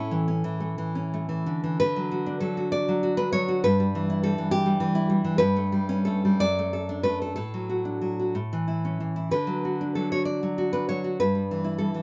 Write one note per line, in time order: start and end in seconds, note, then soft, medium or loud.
0.00 1.46 A2 medium
0.00 0.27 C#4 medium
0.00 1.42 E4 medium
0.00 0.60 A4 medium
0.11 0.43 E3 soft
0.28 0.94 C#4 medium
0.44 0.77 E3 soft
0.60 1.12 A3 soft
0.78 1.28 E3 soft
0.95 1.79 C#4 medium
1.14 1.80 A3 soft
1.29 1.62 E3 soft
1.46 1.79 D3 soft
1.64 1.79 E3 soft
1.80 3.61 D3 medium
1.80 2.39 B4 medium
1.96 2.40 F#3 soft
2.11 2.56 F#4 soft
2.26 3.17 D4 medium
2.40 2.87 F#3 soft
2.40 2.71 A4 medium
2.57 3.02 F#4 soft
2.72 3.17 D5 medium
2.88 3.32 F#3 soft
3.03 3.47 F#4 soft
3.17 3.63 D4 soft
3.17 3.32 B4 medium
3.33 3.63 F#3 soft
3.33 3.62 C#5 loud
3.48 3.64 F#4 medium
3.64 5.36 G2 medium
3.64 4.20 B4 medium
3.80 4.23 G3 soft
3.95 4.37 E3 medium
4.10 4.94 E4 medium
4.23 4.65 G3 soft
4.23 4.51 A4 medium
4.38 4.79 E3 soft
4.51 5.36 G4 medium
4.66 5.08 G3 medium
4.80 5.23 E3 medium
4.95 5.40 E4 medium
5.10 5.40 G3 medium
5.24 5.40 E3 medium
5.38 6.36 G2 medium
5.38 6.02 B4 loud
5.56 6.06 A3 medium
5.72 6.24 G3 soft
5.89 6.40 C#4 medium
6.05 6.40 A3 soft
6.05 6.38 A4 medium
6.25 6.40 G3 medium
6.40 7.33 F#2 medium
6.40 7.01 D5 loud
6.59 7.03 A3 soft
6.73 7.03 A4 soft
6.89 7.36 D4 soft
7.03 7.36 A3 soft
7.03 7.21 B4 medium
7.22 7.34 A4 soft
7.36 8.32 A2 soft
7.36 8.95 A4 medium
7.54 8.00 F#3 soft
7.69 8.18 F#4 soft
7.85 8.34 D4 soft
8.02 8.34 F#3 soft
8.19 8.35 F#4 soft
8.35 9.28 A2 soft
8.53 8.99 E3 soft
8.68 9.15 E4 soft
8.85 9.32 C#4 soft
9.00 9.32 E3 soft
9.16 9.31 E4 soft
9.31 11.17 D3 medium
9.31 9.92 B4 medium
9.47 9.95 F#3 soft
9.65 10.10 F#4 soft
9.81 10.73 D4 soft
9.95 10.42 F#3 soft
9.95 10.11 A4 medium
10.12 10.57 F#4 soft
10.12 10.25 C#5 medium
10.25 10.71 D5 medium
10.43 10.88 F#3 soft
10.58 11.03 F#4 soft
10.73 11.21 D4 soft
10.73 10.88 B4 medium
10.89 11.20 F#3 soft
10.89 11.19 C#5 medium
11.04 11.20 F#4 soft
11.20 12.02 G2 soft
11.20 11.77 B4 medium
11.35 11.79 G3 soft
11.51 11.93 E3 soft
11.65 12.02 E4 soft
11.78 12.02 G3 soft
11.78 12.02 A4 medium
11.94 12.02 E3 soft